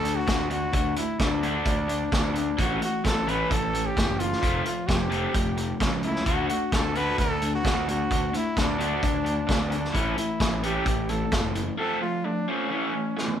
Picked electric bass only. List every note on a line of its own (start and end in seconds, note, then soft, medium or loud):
0.00 0.19 D2 medium
0.28 0.65 D2 medium
0.73 0.92 D2 loud
1.19 1.57 D2 medium
1.66 2.03 D2 medium
2.12 2.49 D2 medium
2.59 2.77 A1 medium
3.05 3.42 A1 medium
3.51 3.88 A1 medium
3.97 4.34 F#1 medium
4.43 4.61 F1 loud
4.88 5.25 F1 medium
5.35 5.71 F1 medium
5.80 6.17 C#2 medium
6.26 6.45 D2 medium
6.72 7.09 D2 medium
7.19 7.55 D2 medium
7.65 8.01 D2 medium
8.11 8.29 D2 loud
8.57 8.94 D2 medium
9.03 9.40 D2 medium
9.49 9.85 D2 medium
9.94 10.13 A1 medium
10.40 10.77 A1 medium
10.86 11.23 A1 loud
11.32 11.69 F#1 medium